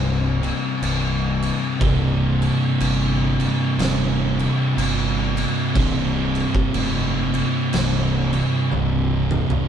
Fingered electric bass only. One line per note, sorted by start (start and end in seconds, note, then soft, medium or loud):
0.00 0.50 C1 loud
0.82 1.49 C1 medium
1.81 2.48 C1 medium
2.80 3.47 G1 medium
3.78 4.45 D#1 loud
4.77 5.44 G1 loud
5.75 6.42 C1 medium
6.75 7.42 F1 medium
7.73 8.40 C1 medium
8.72 9.39 C1 medium